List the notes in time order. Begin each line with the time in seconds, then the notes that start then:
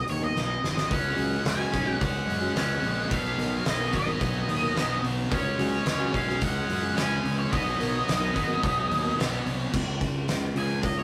0.08 D#2 C#5, open hi-hat
0.20 F#3 B3 D#4 A#4 D#5
0.36 B1, snare
0.48 muted clean electric guitar stroke
0.64 G#1, snare
0.77 snare
0.90 C#2 C#3 G#3 C#4 F#5, kick, open hi-hat
1.03 muted clean electric guitar stroke
1.16 C#2 F#3 C#4 F#4 G#4, open hi-hat
1.44 C#2, muted clean electric guitar stroke, snare, open hi-hat
1.49 G#5
1.57 F#3 C#4 F#4 G#4
1.72 B1 C#3 G#3 C#4, kick, open hi-hat
1.86 F#3 C#4 F#4 G#4
2.01 C#2 F#5, kick, open hi-hat
2.27 F#2, open hi-hat
2.41 F#3 C#4 F#4 G#4
2.55 C#2 C#3 G#3 C#4 F#5, snare, open hi-hat
2.68 muted clean electric guitar stroke
2.83 A#1, open hi-hat
3.09 B1 B2 F#3 B3 F5, kick, open hi-hat
3.23 muted clean electric guitar stroke
3.37 B1 F#3 B3 D#4 A#4, snare, open hi-hat
3.64 B1 D#5, muted clean electric guitar stroke, snare, open hi-hat
3.79 F#3 B3 D#4 A#4
3.92 G#1 B2 F#3 B3 D#5, kick, open hi-hat
4.06 F#3 B3 D#4 A#4
4.21 B1, muted clean electric guitar stroke, kick, open hi-hat
4.48 D#2, open hi-hat
4.62 F#3 B3 D#4 A#4
4.75 B1 B2 F#3 B3, snare, open hi-hat
4.89 muted clean electric guitar stroke
5.03 B1, open hi-hat
5.30 C#2 C#3 G#3 C#4, kick, open hi-hat
5.35 C#5
5.45 muted clean electric guitar stroke
5.58 C#2 F#3 C#4 F#4 G#4, snare, open hi-hat
5.85 C#2, muted clean electric guitar stroke, snare, open hi-hat
6.00 F#3 C#4 F#4 G#4
6.13 B1 C#3 G#3 C#4 F5, kick, open hi-hat
6.28 F#3 C#4 F#4 G#4, snare
6.41 C#2 F#5, muted clean electric guitar stroke, kick, open hi-hat
6.69 F#2, open hi-hat
6.83 F#3 C#4 F#4 G#4
6.95 C#2 C#3 G#3 C#4 G#5, snare, open hi-hat
7.10 muted clean electric guitar stroke
7.25 C#2, open hi-hat
7.39 C#5
7.51 B1 B2 F#3 B3 D#5, kick, open hi-hat
7.65 muted clean electric guitar stroke
7.78 B1 F#3 B3 D#4 A#4, snare, open hi-hat
8.06 B1, muted clean electric guitar stroke, snare, open hi-hat
8.19 F#3 B3 D#4 A#4
8.34 G#1 B2 F#3 B3, kick, open hi-hat
8.47 F#3 B3 D#4 A#4
8.61 B1, muted clean electric guitar stroke, kick, open hi-hat
8.91 D#2, open hi-hat
9.03 F#3 B3 D#4 A#4
9.17 B1 B2 F#3 B3, snare, open hi-hat
9.32 muted clean electric guitar stroke
9.46 C2, open hi-hat
9.72 C#2 C#3 G#3 C#4, kick, crash
9.99 C#2 G#3, kick, open hi-hat
10.27 C#2 C#4, snare, open hi-hat
10.54 C#2 G#3 C#4 F4, open hi-hat
10.58 C#3 G#5
10.82 C#2 C#4 D#5, kick, open hi-hat
10.99 C#5